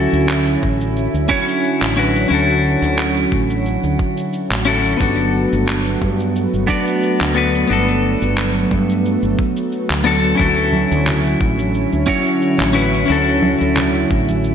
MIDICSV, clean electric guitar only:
0, 0, Header, 1, 2, 480
1, 0, Start_track
1, 0, Key_signature, 2, "major"
1, 0, Tempo, 674157
1, 1645, Time_signature, 4, 2, 24, 8
1, 10358, End_track
2, 0, Start_track
2, 0, Title_t, "Clean electric guitar"
2, 0, Program_c, 0, 27
2, 0, Note_on_c, 0, 61, 82
2, 0, Note_on_c, 0, 64, 72
2, 0, Note_on_c, 0, 66, 75
2, 0, Note_on_c, 0, 69, 92
2, 887, Note_off_c, 0, 61, 0
2, 894, Note_off_c, 0, 64, 0
2, 900, Note_off_c, 0, 66, 0
2, 908, Note_off_c, 0, 69, 0
2, 917, Note_on_c, 0, 61, 79
2, 921, Note_on_c, 0, 64, 77
2, 929, Note_on_c, 0, 66, 74
2, 933, Note_on_c, 0, 73, 92
2, 1374, Note_off_c, 0, 61, 0
2, 1376, Note_off_c, 0, 64, 0
2, 1380, Note_off_c, 0, 66, 0
2, 1382, Note_off_c, 0, 73, 0
2, 1399, Note_on_c, 0, 61, 72
2, 1405, Note_on_c, 0, 64, 63
2, 1412, Note_on_c, 0, 66, 66
2, 1419, Note_on_c, 0, 71, 79
2, 1615, Note_off_c, 0, 61, 0
2, 1618, Note_off_c, 0, 64, 0
2, 1622, Note_off_c, 0, 66, 0
2, 1625, Note_off_c, 0, 71, 0
2, 1626, Note_on_c, 0, 61, 77
2, 1639, Note_on_c, 0, 64, 75
2, 1653, Note_on_c, 0, 66, 76
2, 1666, Note_on_c, 0, 69, 82
2, 3289, Note_off_c, 0, 61, 0
2, 3295, Note_off_c, 0, 64, 0
2, 3302, Note_off_c, 0, 66, 0
2, 3309, Note_off_c, 0, 69, 0
2, 3313, Note_on_c, 0, 61, 93
2, 3321, Note_on_c, 0, 64, 84
2, 3328, Note_on_c, 0, 66, 80
2, 3334, Note_on_c, 0, 69, 102
2, 3532, Note_off_c, 0, 61, 0
2, 3536, Note_off_c, 0, 64, 0
2, 3539, Note_off_c, 0, 66, 0
2, 3541, Note_on_c, 0, 59, 87
2, 3542, Note_off_c, 0, 69, 0
2, 3555, Note_on_c, 0, 62, 78
2, 3569, Note_on_c, 0, 66, 74
2, 3583, Note_on_c, 0, 69, 90
2, 4726, Note_off_c, 0, 59, 0
2, 4733, Note_off_c, 0, 62, 0
2, 4740, Note_off_c, 0, 66, 0
2, 4747, Note_off_c, 0, 69, 0
2, 4750, Note_on_c, 0, 59, 82
2, 4758, Note_on_c, 0, 62, 77
2, 4766, Note_on_c, 0, 66, 77
2, 4769, Note_on_c, 0, 74, 85
2, 5211, Note_off_c, 0, 59, 0
2, 5214, Note_off_c, 0, 62, 0
2, 5219, Note_off_c, 0, 66, 0
2, 5220, Note_off_c, 0, 74, 0
2, 5231, Note_on_c, 0, 59, 75
2, 5237, Note_on_c, 0, 62, 63
2, 5241, Note_on_c, 0, 66, 70
2, 5251, Note_on_c, 0, 71, 83
2, 5451, Note_off_c, 0, 59, 0
2, 5454, Note_off_c, 0, 62, 0
2, 5456, Note_off_c, 0, 66, 0
2, 5461, Note_off_c, 0, 71, 0
2, 5464, Note_on_c, 0, 59, 80
2, 5477, Note_on_c, 0, 62, 72
2, 5492, Note_on_c, 0, 66, 72
2, 5503, Note_on_c, 0, 69, 87
2, 7128, Note_off_c, 0, 59, 0
2, 7134, Note_off_c, 0, 62, 0
2, 7142, Note_off_c, 0, 66, 0
2, 7147, Note_off_c, 0, 69, 0
2, 7149, Note_on_c, 0, 59, 85
2, 7156, Note_on_c, 0, 62, 77
2, 7162, Note_on_c, 0, 66, 80
2, 7167, Note_on_c, 0, 69, 104
2, 7367, Note_off_c, 0, 59, 0
2, 7370, Note_on_c, 0, 61, 85
2, 7374, Note_off_c, 0, 62, 0
2, 7377, Note_off_c, 0, 66, 0
2, 7379, Note_off_c, 0, 69, 0
2, 7387, Note_on_c, 0, 64, 78
2, 7399, Note_on_c, 0, 66, 79
2, 7413, Note_on_c, 0, 69, 92
2, 8561, Note_off_c, 0, 61, 0
2, 8569, Note_off_c, 0, 64, 0
2, 8575, Note_off_c, 0, 66, 0
2, 8582, Note_off_c, 0, 69, 0
2, 8590, Note_on_c, 0, 61, 84
2, 8595, Note_on_c, 0, 64, 75
2, 8603, Note_on_c, 0, 66, 77
2, 8610, Note_on_c, 0, 73, 90
2, 9051, Note_off_c, 0, 61, 0
2, 9053, Note_off_c, 0, 64, 0
2, 9057, Note_off_c, 0, 66, 0
2, 9060, Note_off_c, 0, 73, 0
2, 9065, Note_on_c, 0, 61, 79
2, 9074, Note_on_c, 0, 64, 65
2, 9078, Note_on_c, 0, 66, 69
2, 9084, Note_on_c, 0, 71, 87
2, 9288, Note_off_c, 0, 61, 0
2, 9292, Note_off_c, 0, 64, 0
2, 9295, Note_off_c, 0, 66, 0
2, 9297, Note_off_c, 0, 71, 0
2, 9298, Note_on_c, 0, 61, 79
2, 9312, Note_on_c, 0, 64, 75
2, 9325, Note_on_c, 0, 66, 74
2, 9340, Note_on_c, 0, 69, 92
2, 10358, Note_off_c, 0, 61, 0
2, 10358, Note_off_c, 0, 64, 0
2, 10358, Note_off_c, 0, 66, 0
2, 10358, Note_off_c, 0, 69, 0
2, 10358, End_track
0, 0, End_of_file